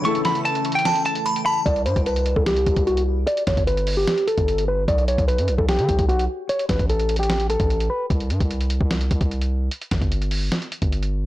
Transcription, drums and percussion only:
0.05 closed hi-hat medium
0.15 closed hi-hat soft
0.25 snare loud
0.25 closed hi-hat medium
0.35 closed hi-hat medium
0.45 closed hi-hat medium
0.55 closed hi-hat medium
0.65 closed hi-hat soft
0.65 open hi-hat medium
0.72 closed hi-hat medium
0.79 closed hi-hat medium
0.85 snare loud
0.85 closed hi-hat medium
0.95 closed hi-hat medium
1.05 closed hi-hat medium
1.15 closed hi-hat medium
1.26 closed hi-hat medium
1.36 closed hi-hat medium
1.66 kick loud
1.66 closed hi-hat medium
1.76 closed hi-hat soft
1.86 closed hi-hat medium
1.96 kick medium
1.96 closed hi-hat medium
2.06 closed hi-hat medium
2.16 closed hi-hat medium
2.26 closed hi-hat medium
2.36 kick medium
2.46 snare loud
2.46 closed hi-hat medium
2.56 closed hi-hat medium
2.66 kick loud
2.66 closed hi-hat medium
2.76 kick loud
2.76 closed hi-hat medium
2.87 closed hi-hat medium
2.97 closed hi-hat medium
3.27 closed hi-hat medium
3.37 closed hi-hat medium
3.47 kick medium
3.47 snare medium
3.47 closed hi-hat medium
3.57 kick medium
3.57 closed hi-hat medium
3.67 closed hi-hat medium
3.77 closed hi-hat medium
3.87 open hi-hat medium
4.08 snare loud
4.08 closed hi-hat medium
4.18 closed hi-hat medium
4.28 closed hi-hat medium
4.38 kick loud
4.38 closed hi-hat medium
4.48 closed hi-hat medium
4.58 closed hi-hat medium
4.88 kick loud
4.88 closed hi-hat medium
4.98 closed hi-hat soft
5.08 closed hi-hat medium
5.18 kick medium
5.18 closed hi-hat medium
5.28 closed hi-hat medium
5.38 closed hi-hat medium
5.48 closed hi-hat medium
5.58 kick medium
5.69 snare loud
5.69 closed hi-hat medium
5.79 closed hi-hat medium
5.89 kick loud
5.89 closed hi-hat medium
5.99 kick loud
5.99 closed hi-hat medium
6.09 closed hi-hat medium
6.19 closed hi-hat medium
6.49 closed hi-hat medium
6.59 closed hi-hat soft
6.69 kick medium
6.69 snare medium
6.69 closed hi-hat medium
6.79 kick medium
6.79 closed hi-hat medium
6.90 closed hi-hat medium
7.00 closed hi-hat medium
7.09 closed hi-hat soft
7.09 open hi-hat medium
7.16 closed hi-hat medium
7.23 closed hi-hat medium
7.30 snare loud
7.30 closed hi-hat medium
7.40 closed hi-hat medium
7.50 closed hi-hat medium
7.60 kick loud
7.60 closed hi-hat medium
7.70 closed hi-hat medium
7.80 closed hi-hat medium
8.10 kick loud
8.10 closed hi-hat medium
8.20 closed hi-hat soft
8.30 closed hi-hat medium
8.40 kick medium
8.40 closed hi-hat medium
8.51 closed hi-hat medium
8.61 closed hi-hat medium
8.70 closed hi-hat medium
8.81 kick medium
8.91 snare loud
8.91 closed hi-hat medium
9.01 closed hi-hat medium
9.11 kick loud
9.11 closed hi-hat medium
9.21 kick loud
9.21 closed hi-hat medium
9.31 closed hi-hat medium
9.41 closed hi-hat medium
9.71 closed hi-hat medium
9.82 closed hi-hat medium
9.91 kick medium
9.91 snare loud
9.91 closed hi-hat medium
10.02 kick medium
10.02 closed hi-hat medium
10.12 closed hi-hat medium
10.22 closed hi-hat medium
10.31 open hi-hat medium
10.52 snare loud
10.52 closed hi-hat medium
10.62 closed hi-hat medium
10.72 closed hi-hat medium
10.82 kick loud
10.82 closed hi-hat medium
10.92 closed hi-hat medium
11.03 closed hi-hat medium

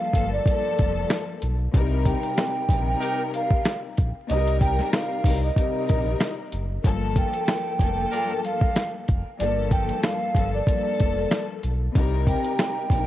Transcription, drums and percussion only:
0.14 kick medium
0.14 closed hi-hat medium
0.46 kick loud
0.46 closed hi-hat medium
0.79 kick medium
0.79 closed hi-hat medium
1.10 snare loud
1.10 closed hi-hat medium
1.42 closed hi-hat medium
1.74 kick loud
1.74 closed hi-hat loud
2.05 kick medium
2.05 closed hi-hat medium
2.23 closed hi-hat medium
2.38 snare loud
2.38 closed hi-hat medium
2.69 kick medium
2.69 closed hi-hat medium
3.03 closed hi-hat loud
3.34 closed hi-hat medium
3.50 kick loud
3.65 snare loud
3.65 snare medium
3.65 closed hi-hat medium
3.97 kick loud
3.97 closed hi-hat medium
4.29 closed hi-hat loud
4.47 closed hi-hat medium
4.61 kick medium
4.61 closed hi-hat medium
4.79 snare soft
4.93 snare loud
4.93 closed hi-hat medium
5.24 kick medium
5.24 open hi-hat medium
5.56 kick loud
5.56 closed hi-hat loud
5.89 kick loud
5.89 closed hi-hat medium
6.20 snare loud
6.20 snare medium
6.20 closed hi-hat medium
6.53 closed hi-hat medium
6.85 kick loud
6.85 closed hi-hat loud
7.16 kick medium
7.16 closed hi-hat medium
7.34 closed hi-hat medium
7.48 snare loud
7.48 closed hi-hat medium
7.79 kick medium
7.79 closed hi-hat medium
8.13 closed hi-hat loud
8.44 closed hi-hat medium
8.61 kick loud
8.76 snare loud
8.76 snare medium
8.76 closed hi-hat medium
9.08 kick loud
9.08 closed hi-hat medium
9.40 closed hi-hat loud
9.71 kick loud
9.71 closed hi-hat medium
9.89 closed hi-hat medium
10.03 snare loud
10.03 closed hi-hat medium
10.35 kick medium
10.35 closed hi-hat medium
10.67 kick loud
10.67 closed hi-hat loud
11.00 kick medium
11.00 closed hi-hat medium
11.31 snare loud
11.31 snare medium
11.31 closed hi-hat medium
11.63 closed hi-hat medium
11.95 kick loud
11.95 closed hi-hat loud
12.27 kick medium
12.27 closed hi-hat medium
12.44 closed hi-hat medium
12.59 snare loud
12.59 closed hi-hat medium
12.90 kick medium
12.90 closed hi-hat medium

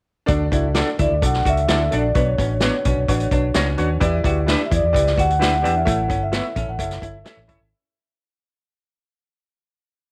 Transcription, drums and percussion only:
0.28 kick loud
0.28 closed hi-hat medium
0.52 kick medium
0.52 closed hi-hat medium
0.75 snare medium
0.75 closed hi-hat medium
0.99 kick medium
0.99 closed hi-hat medium
1.22 kick medium
1.22 closed hi-hat medium
1.33 snare soft
1.45 kick medium
1.45 closed hi-hat medium
1.57 closed hi-hat medium
1.68 snare loud
1.68 closed hi-hat medium
1.92 closed hi-hat medium
2.15 kick loud
2.15 closed hi-hat medium
2.38 kick medium
2.38 closed hi-hat medium
2.60 snare medium
2.60 closed hi-hat medium
2.85 kick medium
2.85 closed hi-hat medium
3.08 kick medium
3.08 closed hi-hat medium
3.20 closed hi-hat soft
3.31 kick medium
3.31 closed hi-hat medium
3.54 snare loud
3.54 closed hi-hat medium
3.78 closed hi-hat medium
4.01 kick loud
4.01 closed hi-hat medium
4.24 kick medium
4.24 closed hi-hat medium
4.48 snare medium
4.48 closed hi-hat medium
4.72 kick medium
4.72 closed hi-hat medium
4.95 kick medium
4.95 closed hi-hat medium
5.06 snare soft
5.18 kick medium
5.18 closed hi-hat medium
5.30 closed hi-hat medium
5.42 snare loud
5.42 closed hi-hat medium
5.65 closed hi-hat medium
5.87 kick loud
5.87 closed hi-hat medium
6.10 kick medium
6.10 closed hi-hat medium
6.33 snare medium
6.33 closed hi-hat medium
6.56 kick medium
6.56 closed hi-hat medium
6.79 kick medium
6.79 closed hi-hat loud
6.91 snare soft
6.91 closed hi-hat soft
7.02 kick medium
7.02 closed hi-hat medium
7.25 snare loud
7.25 closed hi-hat medium
7.49 kick medium
7.49 closed hi-hat medium

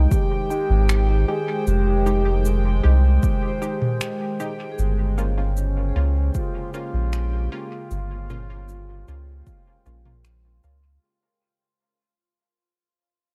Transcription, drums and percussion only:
0.11 kick loud
0.11 shaker soft
0.51 shaker soft
0.89 finger snap medium
0.89 shaker soft
1.67 shaker soft
2.07 shaker soft
2.45 shaker soft
3.23 kick loud
3.23 shaker soft
3.62 shaker soft
3.82 mid tom medium
4.01 finger snap medium
4.01 shaker soft
4.40 shaker soft
4.79 shaker soft
5.18 shaker soft
5.57 shaker medium
6.35 kick loud
6.35 shaker medium
6.74 shaker soft
7.13 finger snap medium
7.13 shaker medium
7.91 shaker medium
8.30 mid tom medium
8.30 shaker soft
8.69 shaker medium
9.08 shaker soft
9.47 kick loud
9.47 shaker medium
9.86 shaker soft
10.05 mid tom medium
10.25 finger snap medium
10.25 shaker medium
10.63 shaker soft

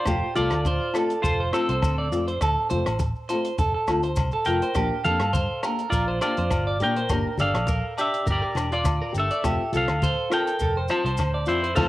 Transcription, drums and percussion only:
0.05 kick medium
0.05 cross-stick medium
0.05 closed hi-hat medium
0.05 muted conga soft
0.05 low agogo medium
0.05 maracas medium
0.35 closed hi-hat soft
0.35 muted conga soft
0.35 high conga medium
0.35 maracas medium
0.50 cross-stick medium
0.50 closed hi-hat soft
0.50 low agogo medium
0.65 kick medium
0.65 closed hi-hat soft
0.65 high conga medium
0.65 maracas medium
0.94 cross-stick medium
0.94 closed hi-hat soft
0.94 low agogo medium
0.94 maracas medium
1.10 closed hi-hat medium
1.10 maracas soft
1.24 kick medium
1.24 closed hi-hat soft
1.24 maracas medium
1.53 cross-stick medium
1.53 closed hi-hat soft
1.53 low agogo medium
1.53 maracas medium
1.69 closed hi-hat soft
1.82 kick medium
1.82 cross-stick medium
1.82 closed hi-hat soft
1.82 high conga medium
1.82 low agogo medium
1.82 maracas loud
2.12 closed hi-hat soft
2.12 muted conga soft
2.12 maracas medium
2.28 closed hi-hat soft
2.41 kick loud
2.41 cross-stick medium
2.41 closed hi-hat medium
2.41 low agogo medium
2.41 maracas loud
2.70 closed hi-hat medium
2.70 muted conga soft
2.70 high conga medium
2.70 low conga medium
2.70 maracas medium
2.86 cross-stick medium
2.86 closed hi-hat medium
2.86 low agogo medium
2.86 maracas soft
2.99 kick medium
2.99 closed hi-hat soft
2.99 high conga medium
2.99 maracas medium
3.15 maracas soft
3.29 closed hi-hat medium
3.29 low agogo medium
3.29 maracas medium
3.44 closed hi-hat medium
3.44 maracas soft
3.58 kick medium
3.58 closed hi-hat soft
3.58 muted conga soft
3.58 low conga medium
3.58 maracas medium
3.87 cross-stick medium
3.87 closed hi-hat soft
3.87 high conga medium
3.87 low agogo medium
3.87 maracas medium
4.03 closed hi-hat soft
4.03 maracas soft
4.16 kick medium
4.16 cross-stick medium
4.16 closed hi-hat soft
4.16 high conga medium
4.16 low agogo medium
4.16 maracas loud
4.32 maracas soft
4.45 closed hi-hat medium
4.45 muted conga soft
4.45 maracas medium
4.62 closed hi-hat soft
4.75 kick medium
4.75 cross-stick medium
4.75 closed hi-hat medium
4.75 low agogo medium
4.75 maracas medium
5.04 closed hi-hat soft
5.04 muted conga soft
5.04 high conga medium
5.04 maracas medium
5.20 cross-stick medium
5.20 closed hi-hat soft
5.20 low agogo medium
5.33 kick medium
5.33 closed hi-hat soft
5.33 high conga medium
5.33 maracas medium
5.63 cross-stick medium
5.63 closed hi-hat soft
5.63 low agogo medium
5.63 maracas medium
5.79 closed hi-hat soft
5.79 maracas soft
5.92 kick medium
5.92 closed hi-hat soft
5.92 maracas medium
6.21 cross-stick medium
6.21 closed hi-hat soft
6.21 low agogo medium
6.21 maracas medium
6.37 closed hi-hat soft
6.50 kick medium
6.50 cross-stick medium
6.50 closed hi-hat soft
6.50 high conga medium
6.50 low agogo medium
6.50 maracas loud
6.80 closed hi-hat soft
6.80 muted conga soft
6.96 closed hi-hat soft
7.09 kick loud
7.09 cross-stick medium
7.09 closed hi-hat medium
7.09 muted conga soft
7.09 low agogo medium
7.09 maracas loud
7.38 closed hi-hat soft
7.38 muted conga soft
7.38 high conga medium
7.38 low conga medium
7.38 maracas medium
7.54 cross-stick medium
7.54 closed hi-hat medium
7.54 low agogo medium
7.67 kick medium
7.67 closed hi-hat soft
7.67 high conga medium
7.67 maracas medium
7.98 closed hi-hat medium
7.98 low agogo medium
7.98 maracas medium
8.14 closed hi-hat medium
8.14 maracas soft
8.26 kick medium
8.26 closed hi-hat soft
8.26 muted conga soft
8.26 low conga medium
8.26 maracas loud
8.55 cross-stick medium
8.55 closed hi-hat soft
8.55 high conga medium
8.55 low agogo medium
8.55 maracas medium
8.72 closed hi-hat soft
8.84 kick medium
8.84 cross-stick medium
8.84 closed hi-hat soft
8.84 high conga medium
8.84 low agogo medium
8.84 maracas loud
9.14 closed hi-hat medium
9.14 muted conga soft
9.14 maracas medium
9.30 closed hi-hat medium
9.44 kick medium
9.44 cross-stick medium
9.44 closed hi-hat medium
9.44 low agogo medium
9.44 maracas loud
9.73 closed hi-hat medium
9.73 muted conga soft
9.73 high conga medium
9.73 maracas medium
9.88 cross-stick medium
9.88 closed hi-hat soft
9.88 low agogo medium
10.02 kick medium
10.02 closed hi-hat soft
10.02 high conga medium
10.02 maracas medium
10.31 cross-stick medium
10.31 closed hi-hat medium
10.31 low agogo medium
10.31 maracas medium
10.47 closed hi-hat soft
10.47 maracas soft
10.59 kick medium
10.59 closed hi-hat soft
10.59 muted conga soft
10.59 maracas loud
10.88 cross-stick medium
10.88 closed hi-hat soft
10.88 low agogo medium
10.88 maracas medium
11.06 closed hi-hat soft
11.17 kick medium
11.17 cross-stick medium
11.17 closed hi-hat soft
11.17 high conga medium
11.17 low agogo medium
11.17 maracas medium
11.46 closed hi-hat medium
11.46 muted conga soft
11.46 maracas medium
11.64 closed hi-hat soft
11.76 kick medium
11.76 snare medium
11.76 high conga loud
11.76 low agogo loud
11.76 maracas loud

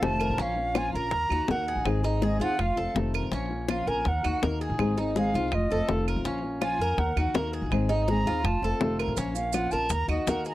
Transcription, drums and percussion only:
0.03 high bongo medium
0.03 low bongo medium
0.20 claves medium
0.38 high bongo medium
0.75 high bongo medium
0.75 claves medium
1.11 high bongo medium
1.30 claves medium
1.48 high bongo medium
1.48 low bongo medium
1.86 high bongo medium
1.86 claves medium
2.04 high bongo soft
2.22 high bongo medium
2.40 high bongo soft
2.59 high bongo medium
2.59 claves medium
2.77 high bongo soft
2.96 high bongo medium
2.96 low bongo medium
3.15 claves medium
3.32 high bongo medium
3.68 high bongo medium
3.68 claves medium
4.05 high bongo medium
4.24 claves medium
4.43 high bongo medium
4.43 low bongo medium
4.79 high bongo medium
4.79 claves medium
4.97 high bongo soft
5.16 high bongo medium
5.34 high bongo soft
5.52 high bongo medium
5.52 claves medium
5.71 high bongo soft
5.89 high bongo medium
5.89 low bongo medium
6.08 claves medium
6.25 high bongo medium
6.61 high bongo medium
6.61 claves medium
6.98 high bongo medium
7.17 claves medium
7.35 high bongo medium
7.35 low bongo medium
7.72 high bongo medium
7.72 claves medium
7.90 high bongo soft
8.08 high bongo medium
8.27 high bongo soft
8.45 high bongo medium
8.45 claves medium
8.63 high bongo soft
8.81 high bongo medium
8.81 low bongo medium
8.99 claves medium
9.17 high bongo medium
9.17 maracas medium
9.35 maracas medium
9.53 high bongo medium
9.53 claves medium
9.53 maracas medium
9.71 maracas soft
9.89 high bongo medium
9.89 maracas medium
10.09 claves medium
10.27 high bongo medium
10.27 low bongo medium
10.27 maracas medium
10.45 maracas soft

